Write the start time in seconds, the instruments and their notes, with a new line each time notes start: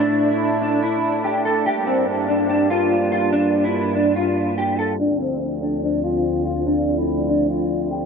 Already playing: analog synth pad A2 A3 D4 E4
0.00 clean electric guitar D4
0.30 clean electric guitar E4
0.62 clean electric guitar D4
0.83 clean electric guitar E4
1.24 clean electric guitar G4
1.45 clean electric guitar A4
1.66 analog synth pad G2 G3 A#3, clean electric guitar G4
1.87 clean electric guitar C4
2.29 clean electric guitar D4
2.49 clean electric guitar D4
2.70 clean electric guitar F4
3.12 clean electric guitar F4
3.33 clean electric guitar D4
3.64 clean electric guitar E4
3.95 clean electric guitar D4
4.16 clean electric guitar F4
4.58 clean electric guitar G4
4.79 clean electric guitar A4
4.99 analog synth pad D2 D3 F3 C4, clean electric guitar D4
5.20 clean electric guitar C4
5.62 clean electric guitar D4
5.83 clean electric guitar D4
6.04 clean electric guitar F4
6.45 clean electric guitar F4
6.66 clean electric guitar D4
6.97 clean electric guitar E4
7.29 clean electric guitar D4
7.50 clean electric guitar F4
7.91 clean electric guitar G4